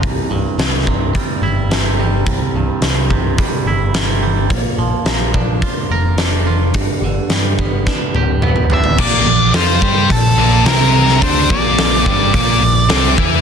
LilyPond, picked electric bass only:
\new Staff \with { instrumentName = "Picked electric bass" } { \clef bass \time 4/4 \key bes \lydian \tempo 4 = 107 c,,16 r16 c,,16 r16 c,8 c,,8 r8 g,,4. | c,,16 r16 c,,16 r16 c,8 c,,8 r8 g,,4. | bes,,16 r16 bes,,16 r16 bes,,8 bes,,8 r8 f,,4. | g,,16 r16 g,,16 r16 g,8 g,,8 r8 d,,4. |
bes,,8 bes,,8 f,8 g,8 bes,,8 bes,,8 c,4 | d,8 bes,,4 g,,8 bes,,8 bes,,8 c,8 e,8 | }